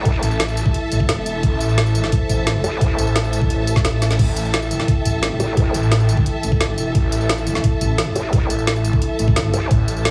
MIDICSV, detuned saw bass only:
0, 0, Header, 1, 2, 480
1, 0, Start_track
1, 0, Key_signature, 0, "minor"
1, 0, Tempo, 344828
1, 75, Time_signature, 4, 2, 24, 8
1, 14070, End_track
2, 0, Start_track
2, 0, Title_t, "Detuned saw bass"
2, 0, Program_c, 0, 39
2, 315, Note_on_c, 0, 33, 99
2, 1016, Note_off_c, 0, 33, 0
2, 1276, Note_on_c, 0, 33, 96
2, 1736, Note_off_c, 0, 33, 0
2, 1755, Note_on_c, 0, 28, 96
2, 1976, Note_off_c, 0, 28, 0
2, 1995, Note_on_c, 0, 33, 99
2, 2216, Note_off_c, 0, 33, 0
2, 2235, Note_on_c, 0, 33, 100
2, 2936, Note_off_c, 0, 33, 0
2, 3195, Note_on_c, 0, 33, 95
2, 3656, Note_off_c, 0, 33, 0
2, 4154, Note_on_c, 0, 33, 97
2, 4855, Note_off_c, 0, 33, 0
2, 4874, Note_on_c, 0, 33, 96
2, 5336, Note_off_c, 0, 33, 0
2, 5354, Note_on_c, 0, 33, 96
2, 5816, Note_off_c, 0, 33, 0
2, 5835, Note_on_c, 0, 33, 95
2, 6056, Note_off_c, 0, 33, 0
2, 6076, Note_on_c, 0, 33, 97
2, 6776, Note_off_c, 0, 33, 0
2, 7035, Note_on_c, 0, 33, 98
2, 7496, Note_off_c, 0, 33, 0
2, 7995, Note_on_c, 0, 33, 101
2, 8696, Note_off_c, 0, 33, 0
2, 8956, Note_on_c, 0, 33, 97
2, 9416, Note_off_c, 0, 33, 0
2, 9435, Note_on_c, 0, 28, 98
2, 9656, Note_off_c, 0, 28, 0
2, 9675, Note_on_c, 0, 33, 97
2, 9896, Note_off_c, 0, 33, 0
2, 9915, Note_on_c, 0, 33, 100
2, 10616, Note_off_c, 0, 33, 0
2, 10875, Note_on_c, 0, 33, 95
2, 11336, Note_off_c, 0, 33, 0
2, 11836, Note_on_c, 0, 33, 99
2, 12536, Note_off_c, 0, 33, 0
2, 12796, Note_on_c, 0, 33, 96
2, 13256, Note_off_c, 0, 33, 0
2, 13514, Note_on_c, 0, 33, 95
2, 13736, Note_off_c, 0, 33, 0
2, 13755, Note_on_c, 0, 33, 99
2, 14070, Note_off_c, 0, 33, 0
2, 14070, End_track
0, 0, End_of_file